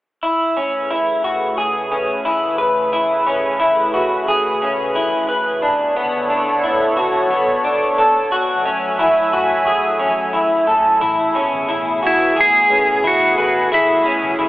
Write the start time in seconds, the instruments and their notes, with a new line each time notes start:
0.23 analog synth pad C#3 A3 G#4 B4, clean electric guitar E4
0.57 clean electric guitar C#4
0.90 clean electric guitar E4
1.24 clean electric guitar F#4
1.58 clean electric guitar G#4
1.92 clean electric guitar C#4
2.25 clean electric guitar E4
2.58 clean electric guitar B4
2.93 clean electric guitar E4
3.27 clean electric guitar C#4
3.60 clean electric guitar E4
3.94 clean electric guitar F#4
4.28 clean electric guitar G#4
4.62 clean electric guitar C#4
4.95 clean electric guitar E4
5.29 clean electric guitar B4
5.62 analog synth pad D3 B3 A4 C#5, clean electric guitar D4
5.96 clean electric guitar B3
6.30 clean electric guitar D4
6.64 clean electric guitar E4
6.97 clean electric guitar F#4
7.31 clean electric guitar B3
7.64 clean electric guitar D4
7.98 clean electric guitar A4
8.31 analog synth pad F#3 A3 E5 G#5, clean electric guitar F#4
8.65 clean electric guitar C#4
8.99 clean electric guitar E4
9.33 clean electric guitar F#4
9.67 clean electric guitar G#4
9.99 clean electric guitar C#4
10.33 clean electric guitar E4
10.67 clean electric guitar A4
11.01 fingered electric bass A1, analog synth pad B2 A3 B3 G#4, clean electric guitar E4
11.35 clean electric guitar C#4
11.53 fingered electric bass A1
11.69 fingered electric bass A1, clean electric guitar E4
12.03 fingered electric bass B1, electric slide guitar E4, clean electric guitar F#4
12.36 fingered electric bass A1, clean electric guitar G#4
12.41 electric slide guitar G#4
12.70 fingered electric bass A2, clean electric guitar C#4
13.04 fingered electric bass A1, clean electric guitar E4, electric slide guitar F#4
13.38 fingered electric bass A1, clean electric guitar B4
13.72 fingered electric bass A1, analog synth pad C#4, clean electric guitar E4, electric slide guitar E4
14.06 clean electric guitar C#4
14.22 fingered electric bass A1
14.39 fingered electric bass A1, clean electric guitar E4